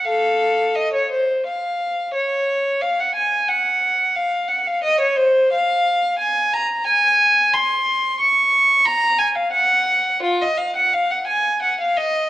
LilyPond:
\new Staff \with { instrumentName = "Violin" } { \time 3/4 \key f \phrygian \tempo 4 = 89 <a' f''>4 ees''16 des''16 c''8 f''4 | des''4 f''16 ges''16 aes''8 ges''4 | f''8 ges''16 f''16 ees''16 des''16 c''8 f''4 | \key ges \lydian aes''8 bes''8 aes''4 c'''4 |
des'''4 bes''8 aes''16 f''16 ges''4 | f'16 ees''16 f''16 ges''16 f''16 ges''16 aes''8 ges''16 f''16 ees''8 | }